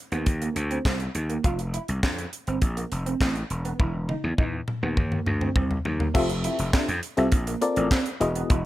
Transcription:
0.12 D#2 B3, closed hi-hat
0.26 D#2, kick, closed hi-hat
0.42 A#3, closed hi-hat
0.56 D2, muted clean electric guitar stroke, closed hi-hat
0.71 C4, closed hi-hat
0.85 C2 C4, kick, snare, clap
1.00 muted clean electric guitar stroke, closed hi-hat
1.15 D#2, closed hi-hat
1.30 A#3, closed hi-hat
1.44 F1 F4, kick, closed hi-hat
1.59 muted clean electric guitar stroke, closed hi-hat
1.74 E4, closed hi-hat
1.88 C2, closed hi-hat
2.03 F2 D4, kick, snare, clap
2.18 muted clean electric guitar stroke, closed hi-hat
2.33 closed hi-hat
2.47 G1 C4, closed hi-hat
2.62 A#1, kick, closed hi-hat
2.77 A#3, closed hi-hat
2.92 F1, muted clean electric guitar stroke, closed hi-hat
3.06 C4, closed hi-hat
3.20 A1 C4, kick, snare, clap
3.35 muted clean electric guitar stroke, closed hi-hat
3.50 E1, closed hi-hat
3.65 B3, closed hi-hat
3.80 E1 E4, kick, high tom
3.94 muted clean electric guitar stroke
4.09 D#4, high tom
4.24 E2
4.38 E2 D#4, kick, mid tom
4.53 muted clean electric guitar stroke
4.68 mid tom
4.83 D#2 B3
4.97 D#2, kick, mid tom
5.12 A#3, mid tom
5.26 D2, muted clean electric guitar stroke, mid tom
5.41 C4, mid tom
5.56 C2 C4, kick, floor tom
5.71 muted clean electric guitar stroke, floor tom
5.85 D#2, floor tom
6.00 A#3, floor tom
6.14 F1 C4 F4 G4 A4 E5, kick, crash
6.29 muted clean electric guitar stroke, closed hi-hat
6.44 E4, closed hi-hat
6.59 F1, closed hi-hat
6.73 D4, kick, snare, clap
6.88 F2, muted clean electric guitar stroke, closed hi-hat
7.03 closed hi-hat
7.17 C2 C4 F4 G4 A4 E5, closed hi-hat
7.32 A#1, kick, closed hi-hat
7.47 A#3, closed hi-hat
7.61 C4 F4 A4 A#4 D5, muted clean electric guitar stroke, closed hi-hat
7.76 A1 C4, closed hi-hat
7.91 C4, kick, snare, clap
8.06 muted clean electric guitar stroke, closed hi-hat
8.20 E1 B3 E4 F#4 G#4 D#5, closed hi-hat
8.35 B3, closed hi-hat
8.50 E1 E4, kick, closed hi-hat

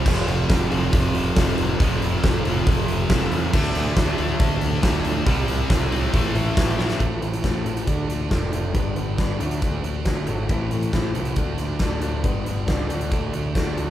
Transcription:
Already playing: C4
0.04 F1 F2 C3 F3 C4 F4 A4 F5, kick, crash
0.28 F1, open hi-hat
0.50 F1, kick, snare, open hi-hat
0.70 F1 C3 F3, open hi-hat
0.74 F2
0.93 F1, kick, open hi-hat
1.15 F1, open hi-hat
1.36 F1 F2 C3, kick, snare, open hi-hat
1.41 F3
1.58 F1, open hi-hat
1.79 F1 F2 C3 F3 E5, kick, open hi-hat
1.84 F3
2.02 F1, open hi-hat
2.24 F1, kick, snare, open hi-hat
2.45 F1 F2 C3 F3, open hi-hat
2.67 F1, kick, open hi-hat
2.88 F1, open hi-hat
3.10 F1 F2 C3, kick, snare, open hi-hat
3.14 F3
3.21 snare
3.32 E2, open hi-hat
3.52 D2 D3 A3 D4 F#4, kick, crash
3.57 D4
3.75 D2, open hi-hat
3.97 D2, kick, snare, open hi-hat
4.17 D2 D3 A3 D4, open hi-hat
4.40 D2, kick, open hi-hat
4.61 D2, open hi-hat
4.82 D2 D3 A3, kick, snare, open hi-hat
4.86 D4
4.94 snare
5.05 D2, open hi-hat
5.25 C2 C3 G3 C4 E4 G4, kick, open hi-hat
5.48 C2, open hi-hat
5.70 C2, kick, snare, open hi-hat
5.91 C2 G3 C4, open hi-hat
5.95 C3
6.12 A1 A2 E3 A3 A4, kick, open hi-hat
6.17 A3
6.35 A1, open hi-hat
6.57 A1, kick, snare, open hi-hat
6.78 A1 A2 E3 A3, snare
6.90 snare
6.99 A1 A2 E3 A3 C4 E4 A4, kick, closed hi-hat
7.21 A1 A2 E3 A3 C4 E4 A4, closed hi-hat
7.34 closed hi-hat
7.42 A1 A2 E3 A3 C4 E4 A4, kick, snare, closed hi-hat
7.64 A1 A2 E3 A3 C4 E4 A4, closed hi-hat
7.77 closed hi-hat
7.86 D2 D3 A3 D4 F4 A4, kick, closed hi-hat
8.08 D2 D3 A3 D4, snare, closed hi-hat
8.30 F1 D3 A3 D4 F4 A4, kick, snare, closed hi-hat
8.52 D3 A3 D4 F4 A4, closed hi-hat
8.74 G1 G2 D3 G3 B3 D4 B4, kick, closed hi-hat
8.96 G1 G2 D3 G3 B3 D4 B4, closed hi-hat
9.18 G1 G2 D3 G3 B3 D4 B4, kick, snare, closed hi-hat
9.40 D2 D3 A3 D4 F#4 A4, closed hi-hat
9.51 closed hi-hat
9.62 D2 D3 A3 D4, kick, closed hi-hat
9.84 D2 D3 A3 D4, closed hi-hat
10.05 D2 D3 A3 D4 F#4 A4, kick, snare, closed hi-hat
10.27 G#1 D3 A3 D4 F#4 A4, closed hi-hat
10.49 A1 A2 E3 A3 C4 E4 A4, kick, closed hi-hat
10.71 A1 A2 E3 A3 C4 E4 A4, closed hi-hat
10.82 closed hi-hat
10.93 A1 A2 E3 A3 C4 E4 A4, kick, snare, closed hi-hat
11.15 C2 A2 E3 A3 C4 E4 A4, closed hi-hat
11.25 closed hi-hat
11.36 D2 D3 A3 D4 F4 A4, kick, closed hi-hat
11.58 D2 D3 A3 D4, snare, closed hi-hat
11.79 D2 D3 A3 D4 F4 A4, kick, snare, closed hi-hat
12.02 D3 A3 D4 F4 A4, closed hi-hat
12.24 G1 G2 D3 G3 B3 D4 B4, kick, closed hi-hat
12.44 G1 G2 D3 G3 B3 D4 B4, closed hi-hat
12.66 C#2 G2 D3 G3 B3 D4 B4, kick, snare, closed hi-hat
12.88 D2 D3 A3 D4 F#4 A4, closed hi-hat
13.01 closed hi-hat
13.11 D2 D3 A3 D4, kick, closed hi-hat
13.33 D2 D3 A3 D4, closed hi-hat
13.54 D2 D3 A3 D4 F#4 A4, kick, snare, closed hi-hat
13.76 D2 D3 A3 D4 F#4 A4, closed hi-hat

